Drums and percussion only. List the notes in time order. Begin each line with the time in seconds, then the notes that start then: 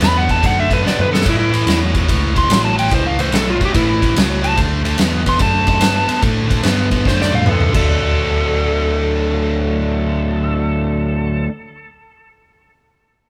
0.01 snare, ride
0.29 kick, ride
0.43 kick, ride
0.71 kick, ride
0.86 snare
0.99 mid tom
1.14 snare
1.21 snare
1.26 kick, ride, splash
1.54 ride
1.67 snare, ride
1.95 kick, ride
2.09 kick, ride
2.36 kick, ride
2.50 snare, ride
2.79 ride
2.87 snare, ride
2.92 kick
3.19 ride
3.32 snare, ride
3.61 kick, ride
3.74 kick, ride
4.02 kick, ride
4.16 snare, ride
4.44 ride
4.57 kick, ride
4.85 ride
4.98 snare, ride
5.26 kick, ride
5.39 kick, ride
5.67 kick, ride
5.81 snare, ride
6.09 ride
6.22 kick, ride
6.50 kick, ride
6.63 snare, ride
6.91 kick, ride
7.05 kick, snare
7.21 snare
7.33 high tom
7.39 high tom
7.46 mid tom
7.61 mid tom
7.74 kick, crash